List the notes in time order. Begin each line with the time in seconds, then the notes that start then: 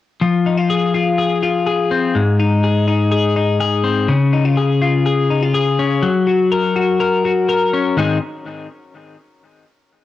0.21 F3
0.46 D#4
0.57 F4
0.70 G#4
0.94 F4
1.18 G#4
1.43 F4
1.67 G#4
1.91 C4
2.15 G#2
2.39 D#4
2.64 G#4
2.88 D#4
3.12 G#4
3.36 D#4
3.61 G#4
3.84 C4
4.09 C#3
4.33 D#4
4.45 F4
4.57 G#4
4.82 F4
5.06 G#4
5.30 D#4
5.43 F4
5.54 G#4
5.79 C#4
6.03 F#3
6.27 F#4
6.52 A#4
6.76 F#4
7.00 A#4
7.25 F#4
7.49 A#4
7.73 C#4
7.97 G#2 D#3 G#3 C4 D#4 G#4